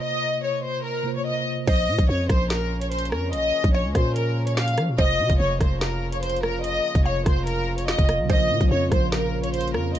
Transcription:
Already playing: tine electric piano C3 A#3 F4 C5
0.02 violin section D#5
0.43 violin section C#5
0.64 violin section C5
0.85 violin section A#4
1.03 tine electric piano C3 A#3 F4
1.08 tine electric piano C5
1.16 violin section C#5
1.26 violin section D#5
1.67 808-style bass A#1, french horn section C#3 F3 A#3 C#4, synth pluck C5, violin section D#5, kick, closed hi-hat, crash
1.88 808-style bass A#2
1.99 808-style bass A#1, kick, closed hi-hat
2.09 808-style bass F2, violin section C#5
2.29 808-style bass A#1, violin section C5, kick, cross-stick, closed hi-hat
2.50 violin section A#4, snare, closed hi-hat
2.81 violin section C#5, closed hi-hat
2.92 violin section C5, closed hi-hat
2.99 closed hi-hat
3.05 closed hi-hat
3.12 808-style bass F2, violin section A#4, cross-stick
3.33 808-style bass A#1, violin section D#5, closed hi-hat
3.64 808-style bass A#1, kick, closed hi-hat
3.74 violin section C#5, synth pluck C#5
3.85 808-style bass C#2
3.95 808-style bass A#2, violin section C5, kick, cross-stick, closed hi-hat
4.16 violin section A#4, closed hi-hat
4.47 violin section C#5, closed hi-hat
4.57 violin section F5, snare
4.68 closed hi-hat
4.78 808-style bass F3, cross-stick, closed hi-hat
4.88 808-style bass A#2
4.98 808-style bass F1, french horn section F4, synth pluck C5, violin section D#5, kick, closed hi-hat
5.19 808-style bass C3
5.30 808-style bass F1, kick, closed hi-hat
5.40 808-style bass F1, violin section C#5
5.61 808-style bass F1, violin section C5, kick, cross-stick, closed hi-hat
5.81 violin section A#4, snare, closed hi-hat
6.12 violin section C#5, closed hi-hat
6.23 violin section C5, closed hi-hat
6.30 closed hi-hat
6.36 closed hi-hat
6.43 violin section A#4, cross-stick
6.64 violin section D#5, closed hi-hat
6.95 808-style bass F1, kick, closed hi-hat
7.05 violin section C#5, synth pluck F5
7.26 808-style bass F1, violin section C5, kick, cross-stick, closed hi-hat
7.47 violin section A#4, closed hi-hat
7.78 violin section C#5, closed hi-hat
7.88 violin section D#5, snare
7.98 808-style bass F1, kick, closed hi-hat
8.09 cross-stick, closed hi-hat
8.19 808-style bass C2
8.25 tine electric piano C#3 A#3
8.29 808-style bass A#1, french horn section C#3 C#4, tine electric piano F4, synth pluck C5, violin section D#5, kick, closed hi-hat
8.34 tine electric piano A#4
8.50 808-style bass A#2
8.61 808-style bass A#1, kick, closed hi-hat
8.71 808-style bass F2, violin section C#5
8.92 808-style bass A#1, violin section C5, kick, cross-stick, closed hi-hat
9.12 violin section A#4, snare, closed hi-hat
9.43 violin section C#5, closed hi-hat
9.54 violin section C5, closed hi-hat
9.61 closed hi-hat
9.68 closed hi-hat
9.74 808-style bass F2, violin section A#4, cross-stick
9.95 808-style bass A#1, violin section D#5, closed hi-hat

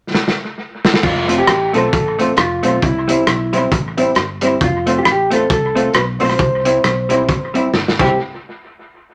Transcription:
0.14 snare
0.28 snare
0.85 snare
0.94 snare
1.03 fingered electric bass F1, clean electric guitar F4, kick, crash
1.28 hollow-body jazz guitar A3 C4 F4, upright piano C4 F4 A4 C5, closed hi-hat
1.38 clean electric guitar G4
1.47 fingered electric bass A1, cross-stick, closed hi-hat
1.73 fingered electric bass B1, hollow-body jazz guitar A3 C4 F4, upright piano C4 F4 A4 C5, clean electric guitar A4, closed hi-hat
1.93 fingered electric bass A1, kick, closed hi-hat
2.18 hollow-body jazz guitar A3 C4 F4, upright piano C4 F4 A4 C5, closed hi-hat
2.37 fingered electric bass F1, clean electric guitar F4, cross-stick, closed hi-hat
2.63 fingered electric bass B1, hollow-body jazz guitar A3 C4 F4, upright piano C4 F4 A4 C5, closed hi-hat
2.82 fingered electric bass C2, clean electric guitar E4, kick, closed hi-hat
3.08 hollow-body jazz guitar G3 C4 E4, upright piano C4 E4 G4 C5, closed hi-hat
3.27 fingered electric bass B1, cross-stick, closed hi-hat
3.52 hollow-body jazz guitar G3 C4 E4, upright piano C4 E4 G4 C5, closed hi-hat
3.72 fingered electric bass A1, kick, closed hi-hat
3.97 hollow-body jazz guitar G3 C4 E4, upright piano C4 E4 G4 C5, closed hi-hat
4.15 fingered electric bass G1, cross-stick, closed hi-hat
4.41 hollow-body jazz guitar G3 C4 E4, upright piano C4 E4 G4 C5, closed hi-hat
4.61 fingered electric bass F1, clean electric guitar F4, kick, closed hi-hat
4.86 hollow-body jazz guitar A3 C4 F4, upright piano C4 F4 A4 C5, closed hi-hat
4.98 clean electric guitar G4
5.03 fingered electric bass A1, clean electric guitar F4, cross-stick, closed hi-hat
5.12 clean electric guitar G4
5.30 hollow-body jazz guitar A3 C4 F4, upright piano C4 F4 A4 C5, clean electric guitar A4, closed hi-hat
5.50 fingered electric bass C2, clean electric guitar A4, kick, closed hi-hat
5.75 hollow-body jazz guitar A3 C4 F4, upright piano C4 F4 A4 C5, closed hi-hat
5.94 fingered electric bass B1, clean electric guitar B4, cross-stick, closed hi-hat
6.19 fingered electric bass B1, hollow-body jazz guitar A3 C4 F4, upright piano C4 F4 A4 C5, clean electric guitar C5, open hi-hat
6.30 cross-stick
6.39 fingered electric bass C2, kick, closed hi-hat
6.64 hollow-body jazz guitar G3 C4 E4, upright piano C4 E4 G4 C5, closed hi-hat
6.84 fingered electric bass B1, cross-stick, closed hi-hat
7.09 hollow-body jazz guitar G3 C4 E4, upright piano C4 E4 G4 C5, closed hi-hat
7.29 fingered electric bass A1, kick, closed hi-hat
7.54 hollow-body jazz guitar G3 C4 E4, upright piano C4 E4 G4 C5, closed hi-hat
7.74 fingered electric bass G1, snare
7.88 snare
7.99 fingered electric bass C2, hollow-body jazz guitar G3 C4 E4, upright piano C4 E4 G4 C5, clean electric guitar G4, kick, crash

